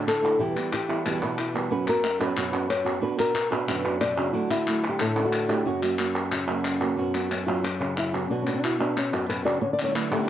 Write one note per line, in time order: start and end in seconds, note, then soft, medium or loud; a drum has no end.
0.00 0.38 A2 medium
0.00 0.38 D3 medium
0.00 0.40 A3 soft
0.07 0.39 A4 loud
0.07 muted nylon-string guitar stroke medium
0.07 clap medium
0.23 0.39 A3 soft
0.23 0.39 D4 soft
0.23 0.39 E4 soft
0.23 0.38 E4 soft
0.23 clap soft
0.39 0.55 E2 medium
0.39 0.55 B2 medium
0.39 1.71 E3 medium
0.39 0.55 E3 medium
0.39 0.56 G3 medium
0.39 0.56 B3 medium
0.39 0.55 E4 medium
0.39 0.72 G4 loud
0.56 0.72 E3 soft
0.56 0.72 G3 soft
0.56 0.72 B3 soft
0.56 0.72 E4 soft
0.56 0.89 E4 soft
0.56 clap medium
0.72 1.05 G4 loud
0.72 muted nylon-string guitar stroke medium
0.72 clap medium
0.89 1.05 E3 soft
0.89 1.05 G3 soft
0.89 1.05 B3 soft
0.89 1.05 E4 soft
0.89 1.38 E4 soft
0.89 clap soft
1.05 1.21 E2 medium
1.05 1.71 B2 medium
1.05 1.21 B2 medium
1.05 1.22 E3 medium
1.05 1.22 G3 medium
1.05 1.22 B3 medium
1.05 1.21 E4 medium
1.05 1.22 G4 medium
1.05 clap medium
1.22 1.37 E3 soft
1.22 1.37 G3 soft
1.22 1.37 B3 soft
1.22 1.38 E4 soft
1.22 1.71 B4 medium
1.22 clap soft
1.38 1.70 E4 soft
1.38 muted nylon-string guitar stroke medium
1.38 clap medium
1.54 1.70 E3 soft
1.54 1.70 G3 soft
1.54 1.70 B3 soft
1.54 1.70 E4 soft
1.54 clap soft
1.70 1.86 F#2 medium
1.70 2.35 F#2 medium
1.70 1.87 B2 medium
1.70 1.87 F#3 medium
1.70 1.87 B3 medium
1.70 1.87 C#4 medium
1.70 1.86 F#4 medium
1.70 1.88 B4 loud
1.87 2.03 F#3 soft
1.87 2.03 B3 soft
1.87 2.03 C#4 soft
1.87 2.03 F#4 soft
1.87 2.21 A#4 loud
1.87 clap medium
2.03 muted nylon-string guitar stroke soft
2.03 clap medium
2.20 2.36 F#3 soft
2.20 2.36 B3 soft
2.20 2.36 C#4 medium
2.20 2.36 F#4 medium
2.20 2.70 B4 loud
2.20 clap medium
2.36 2.52 F#2 medium
2.36 3.02 F#2 medium
2.36 2.53 B2 medium
2.36 2.53 F#3 medium
2.36 2.52 B3 medium
2.36 2.52 C#4 medium
2.36 2.51 F#4 medium
2.36 clap loud
2.52 2.68 F#3 soft
2.52 2.68 B3 soft
2.52 2.68 C#4 soft
2.52 2.68 F#4 soft
2.52 3.35 F#4 medium
2.52 clap medium
2.68 3.02 C#5 loud
2.68 muted nylon-string guitar stroke medium
2.68 clap medium
2.85 3.01 F#3 soft
2.85 3.00 B3 soft
2.85 3.01 C#4 soft
2.85 3.01 F#4 medium
2.85 clap soft
3.01 3.17 B2 medium
3.01 3.68 B2 medium
3.01 3.18 D3 medium
3.01 3.18 B3 medium
3.01 3.17 D4 medium
3.01 3.16 F#4 medium
3.01 3.19 B4 loud
3.17 3.33 B3 soft
3.17 3.34 D4 soft
3.17 3.33 F#4 medium
3.17 3.52 A#4 loud
3.17 clap medium
3.34 3.86 F#4 medium
3.34 muted nylon-string guitar stroke medium
3.34 clap medium
3.51 3.67 B3 soft
3.51 3.67 D4 soft
3.51 3.67 F#4 medium
3.51 4.01 B4 loud
3.51 clap medium
3.67 4.34 F#2 medium
3.67 3.83 B2 medium
3.67 3.84 D3 medium
3.67 3.84 B3 medium
3.67 3.84 D4 medium
3.67 3.83 F#4 medium
3.67 clap loud
3.85 4.00 B3 soft
3.85 4.00 D4 soft
3.85 4.00 F#4 soft
3.85 4.33 F#4 medium
3.85 clap medium
4.00 4.17 B2 medium
4.00 4.33 D5 loud
4.00 muted nylon-string guitar stroke medium
4.00 clap medium
4.17 4.34 C#3 medium
4.17 4.34 B3 soft
4.17 4.33 D4 soft
4.17 4.33 F#4 soft
4.17 clap medium
4.33 4.49 D3 medium
4.33 5.64 D3 medium
4.33 4.50 F#3 medium
4.33 4.50 A3 medium
4.33 4.49 D4 medium
4.33 4.48 E4 medium
4.33 4.83 F#4 loud
4.50 4.66 A3 soft
4.50 4.66 D4 soft
4.50 4.66 E4 soft
4.50 4.89 E4 loud
4.50 clap medium
4.67 4.99 F#3 soft
4.67 4.99 A3 soft
4.67 5.66 A3 soft
4.67 4.99 D4 soft
4.67 4.99 E4 medium
4.67 clap medium
4.84 clap medium
4.89 5.00 G4 loud
4.99 5.64 A2 medium
4.99 5.25 A4 loud
4.99 muted nylon-string guitar stroke medium
4.99 clap loud
5.16 5.49 A3 soft
5.16 5.25 C#4 medium
5.16 5.49 D4 soft
5.16 5.47 E4 soft
5.16 clap soft
5.25 5.49 E4 soft
5.25 5.65 F#4 loud
5.33 clap medium
5.49 5.66 A3 soft
5.49 5.65 D4 soft
5.49 5.65 E4 medium
5.49 5.66 G4 loud
5.49 clap medium
5.65 6.96 F#2 medium
5.65 5.81 F#2 medium
5.65 5.81 C#3 medium
5.65 5.82 F#3 medium
5.65 5.82 A#3 medium
5.65 5.81 C#4 medium
5.65 6.98 F#4 loud
5.65 5.80 F#4 medium
5.82 5.97 F#3 soft
5.82 5.98 A#3 soft
5.82 5.98 C#4 soft
5.82 5.98 F#4 soft
5.82 clap medium
5.98 6.31 F#3 soft
5.98 6.31 A#3 soft
5.98 6.31 C#4 soft
5.98 6.32 F#4 soft
5.98 clap medium
6.16 clap medium
6.31 6.96 C#3 medium
6.31 muted nylon-string guitar stroke medium
6.31 clap loud
6.47 6.81 F#3 soft
6.47 6.80 A#3 soft
6.47 6.80 C#4 soft
6.47 6.80 C#4 medium
6.47 6.79 F#4 soft
6.47 clap medium
6.65 clap medium
6.80 6.97 F#3 soft
6.80 6.97 A#3 soft
6.80 6.97 C#4 soft
6.80 6.97 F#4 soft
6.80 clap soft
6.97 7.13 F#2 medium
6.97 8.30 F#2 medium
6.97 7.13 B2 medium
6.97 7.14 F#3 medium
6.97 7.14 B3 medium
6.97 7.31 C#4 soft
6.97 7.14 C#4 medium
6.97 7.13 F#4 medium
7.14 7.29 F#3 soft
7.14 7.29 B3 soft
7.14 7.30 C#4 soft
7.14 7.30 F#4 soft
7.14 clap medium
7.30 7.46 F#3 soft
7.30 7.46 B3 soft
7.30 7.46 C#4 soft
7.30 7.45 F#4 soft
7.30 clap medium
7.46 8.47 F#3 medium
7.46 7.62 F#3 soft
7.46 7.63 B3 soft
7.46 7.63 C#4 soft
7.46 7.64 F4 medium
7.46 7.63 F#4 soft
7.46 clap soft
7.63 7.97 F#4 medium
7.63 muted nylon-string guitar stroke medium
7.63 clap medium
7.80 8.28 C#3 medium
7.80 7.97 C#4 soft
7.80 clap soft
7.97 8.14 E4 medium
7.97 clap medium
8.13 8.30 F#3 soft
8.13 8.30 B3 soft
8.13 8.29 C#4 soft
8.13 8.30 C#4 medium
8.13 8.29 F#4 soft
8.13 clap soft
8.30 8.46 B2 medium
8.30 9.13 B2 medium
8.30 8.46 D3 medium
8.30 8.47 B3 medium
8.30 8.41 D4 medium
8.30 8.46 D4 medium
8.30 8.45 F#4 medium
8.42 8.53 C#4 medium
8.42 8.62 F#4 soft
8.47 8.79 B3 soft
8.47 8.62 B3 soft
8.47 8.62 D4 soft
8.47 clap medium
8.54 8.64 D4 medium
8.62 8.79 D3 soft
8.62 8.79 B3 soft
8.62 8.79 D4 soft
8.62 8.80 E4 loud
8.62 8.78 F#4 soft
8.62 clap medium
8.79 9.61 B3 medium
8.79 8.95 B3 soft
8.79 8.95 D4 soft
8.79 8.97 D4 medium
8.79 8.95 F#4 soft
8.79 clap soft
8.96 9.13 C#4 medium
8.96 muted nylon-string guitar stroke medium
8.96 clap medium
9.13 9.61 F#2 medium
9.13 9.29 F#4 medium
9.13 clap soft
9.28 9.45 B2 medium
9.28 9.45 B4 loud
9.28 clap medium
9.45 9.62 C#3 medium
9.45 9.62 B3 soft
9.45 9.62 D4 soft
9.45 9.61 F#4 soft
9.45 9.62 D5 loud
9.45 clap medium
9.61 10.29 D3 medium
9.61 9.73 C#5 loud
9.61 muted nylon-string guitar stroke medium
9.73 9.84 D5 loud
9.79 9.84 F#3 soft
9.79 9.85 A3 soft
9.79 9.85 D4 soft
9.79 9.85 E4 soft
9.79 clap medium
9.84 9.89 F#3 medium
9.84 9.89 A3 medium
9.84 9.89 D4 medium
9.84 9.90 E4 medium
9.84 9.95 C#5 medium
9.90 9.94 F#3 medium
9.90 9.94 A3 medium
9.90 9.94 D4 medium
9.90 9.94 E4 medium
9.94 10.11 D3 medium
9.94 10.11 F#3 medium
9.94 10.11 A3 medium
9.94 10.11 D4 medium
9.94 10.10 E4 medium
9.94 10.12 B4 medium
9.94 clap medium
10.11 10.17 F#3 soft
10.11 10.29 A3 medium
10.11 10.18 A3 medium
10.11 10.14 D4 soft
10.11 10.18 D4 medium
10.11 10.14 E4 soft
10.11 10.28 G4 loud
10.11 clap medium
10.15 10.22 F#3 medium
10.15 10.22 A3 medium
10.15 10.19 E4 medium
10.19 10.27 F#3 medium
10.19 10.23 D4 medium
10.19 10.23 E4 medium
10.23 10.27 A3 medium
10.23 10.27 D4 medium
10.23 10.27 E4 medium